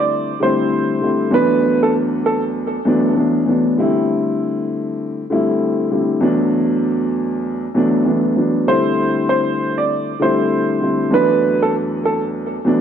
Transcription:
Already playing: D3 G3 A3 C4 E4
0.00 D5
0.40 D3 G3 A3 C4 E4 C5
1.01 D3 G3 A3 C4 E4
1.31 E2 F#3 A3 B3 D4 B4
1.83 A4
2.26 A4
2.85 E2 F#3 A3 B3 D4
3.15 E2 F#3 A3 B3 D4
3.46 E2 F#3 A3 B3 D4
3.77 D3 G3 A3 C4 E4
5.30 D3 G3 A3 C4 E4
5.91 D3 G3 A3 C4 E4
6.21 E2 F#3 A3 B3 D4
7.75 E2 F#3 A3 B3 D4
8.04 E2 F#3 A3 B3 D4
8.36 E2 F#3 A3 B3 D4
8.67 D3 G3 A3 C4 E4 C5
9.29 C5
9.78 D5
10.19 D3 G3 A3 C4 E4 C5
10.81 D3 G3 A3 C4 E4
11.10 E2 F#3 A3 B3 D4 B4
11.62 A4
12.05 A4
12.65 E2 F#3 A3 B3 D4

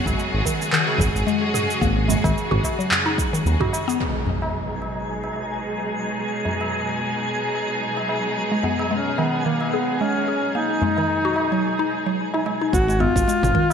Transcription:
Already playing: C#3 F#3 G#3 B3 F#4 G#4
0.06 G#1, kick, tabla na, cabasa
0.18 G#3, cabasa
0.33 G#1
0.45 D#3, kick, tabla na, cabasa
0.61 cabasa
0.72 D#3, clap, cabasa
0.88 tabla na
0.98 G#1 G#4, kick, tabla tin, tabla ge, cabasa
1.15 G#1, cabasa
1.27 G#3, cabasa
1.41 tabla tin
1.54 G#4, mid tom, cabasa
1.70 cabasa
1.81 G#1 A#3, kick, cabasa
2.08 G#3, tabla tin, tabla ge, cabasa
2.24 G#1 D#3, kick, tabla na, cabasa
2.38 cabasa
2.51 G#1 F#4, mid tom
2.64 kick, tabla na, cabasa
2.79 F#3, cabasa
2.91 clap, tabla ge, cabasa
3.06 D#4
3.18 kick, tabla na, cabasa
3.33 D#3, cabasa
3.46 D#2, cabasa
3.60 F#4, kick, mid tom, tabla na, tabla tin, tabla ge
3.73 tabla na, cabasa
3.88 B3, cabasa
4.00 B2 F#3 G#3 D#4 G#4 G#5, impact
4.27 tabla tin, tabla ge
4.42 tabla na
4.82 tabla na
5.24 tabla na
5.36 tabla tin
5.79 tabla tin
6.45 tabla tin, tabla ge
6.61 tabla na
7.54 tabla na
7.97 tabla na, tabla tin
8.09 tabla na
8.52 G#3
8.63 B3, tabla tin, tabla ge
8.79 tabla na
8.91 G#3 C#4
9.18 D#3 B3, tabla na
9.46 D#3 A#3
9.61 tabla na
9.73 B3 G#4, tabla tin
10.01 G#3 C#4
10.15 tabla tin
10.28 G#4
10.55 A#3 D#4
10.81 G#3, tabla tin, tabla ge
10.97 D#3, tabla na
11.25 F#4
11.36 tabla na
11.52 F#3
11.79 D#4
11.91 tabla na
12.06 F#3
12.34 D#4, tabla na, tabla tin
12.46 G#3, tabla na
12.61 D#4
12.73 G#1 F#4, kick, cabasa
12.88 G#3, cabasa
13.00 B3 F4, tabla na, tabla tin, tabla ge
13.16 G#1, kick, cabasa
13.28 G#3, cabasa
13.43 G#1, mid tom, cabasa
13.55 D#3, kick

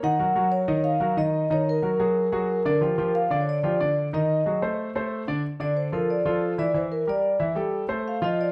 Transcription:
0.03 D#3 D#4 D#5 F#5
0.19 F#3 F#4 A#4
0.36 F#3 F#4 A#4
0.52 C#5
0.68 D#3 D#4 D#5
0.84 F5
1.00 F#3 F#4 A#4
1.17 D#3 D#4 D#5
1.50 D#3 D#4 C#5 D#5
1.69 A#4
1.82 F#3 F#4 A#4
1.99 F#3 F#4 G#4
2.32 F#3 F#4 G#4
2.65 D3 D4 A#4 D5
2.81 F3 F4 G4
2.98 F3 F4 G4
3.15 F5
3.30 D3 D4 D5
3.41 C#5
3.49 D5
3.63 F3 F4 G4
3.80 D3 D4 D5
4.13 D#3 D#4 D#5
4.46 F#3 F#4 G#4
4.62 A3 A4 C5
4.95 A3 A4 C5
5.27 D3 D4 D5
5.60 D3 D4 D5
5.77 C5
5.92 F3 F4 A4 A#4
6.10 D5
6.25 F3 F4 A4
6.58 E3 E4 D5 E5
6.74 E3 E4 C5 E5
6.92 A#4
7.07 G3 G4 A#4 D5
7.40 E3 E4 E5
7.55 G3 G4 A4
7.88 A3 A4 C5
8.08 F5
8.22 F3 F4 D#5 F5
8.41 D5

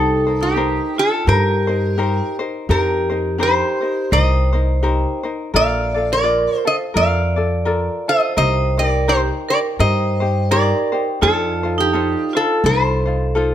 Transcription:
Already playing: C2 D#4 G4 A4 C5
0.27 D#4 A#4 C5
0.41 D#4 G4
0.56 D#4 G4 A#4 C5
0.96 D#4 F4 A4 C5
1.26 G2 D#4 G4 A#4 C5
1.67 D#4 A#4 C5
1.98 D#4 G4 A#4 C5
2.39 D#4 A#4 C5
2.69 F2 D#4 G4 A#4 C5
3.10 D#4 A#4 C5
3.38 D#4 G4 A#4 C5
3.43 C5
3.81 D#4 A#4 C5
4.11 C2 D#4 G4 A#4 C5 D#5
4.53 D#4 A#4 C5
4.83 D#4 G4 A#4 C5
5.23 D#4 A#4 C5
5.54 A#1 F4 A4 A#4 D5 F5
5.94 F4 A4 D5
6.12 A#4 D5
6.23 F4 A#4 D5
6.57 C5
6.65 F4 A4 C5 D#5
6.94 F2 F4 A4 A#4 D5 F5
7.36 F4 A4 D5
7.65 F4 A4 A#4 D5
8.08 F4 A4 C5 D#5
8.37 C2 D#4 G4 A#4 C5 D#5
8.78 D#4 G4 A#4 C5 D5
9.08 D#4 G4 A#4 C5
9.49 D#4 G4 A#4 C5 D5
9.79 G2 D#4 G4 A#4 C5 D#5
10.20 D#4 G4 C5
10.51 D#4 G4 A#4 C5 D5
10.92 D#4 G4 C5
11.21 F2 D#4 F4 A4 C5
11.63 D#4 F4 C5
11.78 D#4 G4
11.93 D#4 F4 A4 C5
12.33 D#4 F4 A4 C5
12.64 C2 D#4 F4 A4 C5
13.06 D#4 F4 C5
13.35 D#4 F4 A4 C5

